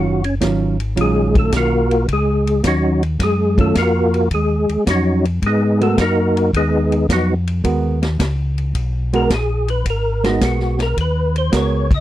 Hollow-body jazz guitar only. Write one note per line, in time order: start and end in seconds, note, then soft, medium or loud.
0.00 0.20 D#3 medium
0.00 0.21 F#3 medium
0.00 0.21 C#4 medium
0.00 0.21 F4 medium
0.41 0.76 D#3 medium
0.41 0.76 F#3 medium
0.41 0.76 C#4 medium
0.41 0.76 F4 medium
0.96 1.83 D#3 medium
0.96 1.83 F#3 medium
0.96 1.83 C#4 medium
0.96 1.83 F4 medium
3.58 3.73 D#3 medium
3.58 3.74 F#3 medium
3.58 3.74 C#4 medium
3.58 3.74 F4 medium
5.81 5.96 G#3 medium
5.81 5.96 B3 medium
5.81 5.97 F#4 medium
5.81 5.97 A#4 medium
7.64 7.98 G#3 medium
7.64 7.99 B3 medium
7.64 7.99 F#4 medium
7.64 7.99 A#4 medium
9.13 9.29 G#3 medium
9.13 9.29 B3 medium
9.13 9.29 F#4 medium
9.13 9.29 A#4 medium
10.24 10.93 G#3 medium
10.24 10.94 B3 medium
10.24 10.94 F#4 medium
10.24 10.94 A#4 medium
11.52 11.87 G#3 medium
11.52 11.87 B3 medium
11.52 11.87 F#4 medium
11.52 11.87 A#4 medium